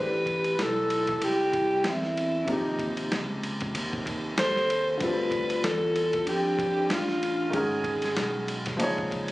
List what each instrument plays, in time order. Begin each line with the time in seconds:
Already playing: fretless electric bass A1, upright piano E3 A3 D4 G4, vibraphone G4, alto saxophone B4
0.00 upright piano B4
0.26 kick, ride
0.44 ride
0.58 fretless electric bass B1, vibraphone E4, alto saxophone A4, snare, hi-hat pedal, ride
0.90 ride
1.07 kick, ride
1.22 fretless electric bass C2, vibraphone E4, alto saxophone G4, ride
1.53 kick, ride
1.84 fretless electric bass E2, vibraphone C4, snare, hi-hat pedal, ride
1.90 alto saxophone E4
2.03 snare
2.17 ride
2.44 fretless electric bass D#2, upright piano C3 F3 A#3, kick, ride
2.49 vibraphone A#3, upright piano D#4 G4, alto saxophone D#4
2.79 kick, ride
2.97 ride
3.12 fretless electric bass C#2, snare, hi-hat pedal, ride
3.43 ride
3.61 kick, ride
3.75 fretless electric bass D#2, ride
3.93 kick
4.06 kick, ride
4.38 fretless electric bass D#2, vibraphone A4, alto saxophone C5, snare, hi-hat pedal, ride
4.56 snare
4.70 ride
4.96 upright piano D3 G3, vibraphone A4, alto saxophone C5
5.00 fretless electric bass D2, upright piano C4 F4 A4, vibraphone F4, alto saxophone B4, kick, ride
5.31 kick, ride
5.50 ride
5.62 fretless electric bass E2, vibraphone F4, alto saxophone A4, snare, hi-hat pedal, ride
5.96 ride
6.13 kick, ride
6.25 fretless electric bass F2, vibraphone D4, alto saxophone G4, ride
6.59 kick, ride
6.89 fretless electric bass A1, vibraphone D4, alto saxophone F4, snare, hi-hat pedal, ride
7.08 snare
7.23 ride
7.50 fretless electric bass G#1, upright piano D#3 G#3 C#4, vibraphone D#4, kick, ride
7.54 upright piano F#4 A#4, alto saxophone G#4
7.84 kick, ride
8.02 snare, ride
8.16 fretless electric bass B1, snare, hi-hat pedal, ride
8.48 ride
8.66 kick, snare, ride
8.77 fretless electric bass C#2, upright piano A#2 F3 D#4, ride
8.82 upright piano G#4 C#5
8.98 kick
9.11 kick, ride
9.28 ride